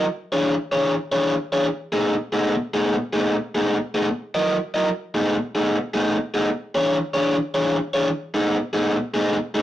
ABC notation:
X:1
M:4/4
L:1/8
Q:"Swing" 1/4=149
K:Bmix
V:1 name="Overdriven electric guitar"
z [E,=DGc] z [E,DGc] z [E,DGc] z [E,DGc] | z [B,,A,DG] z [B,,A,DG] z [B,,A,DG] z [B,,A,DG] | z [B,,A,DG] z [B,,A,DG] z [F,E^Ad] z [F,EAd] | z [B,,A,DG] z [B,,A,DG] z [B,,A,DG] z [B,,A,DG] |
z [E,=DGc] z [E,DGc] z [E,DGc] z [E,DGc] | z [B,,A,DG] z [B,,A,DG] z [B,,A,DG] z [B,,A,DG] |]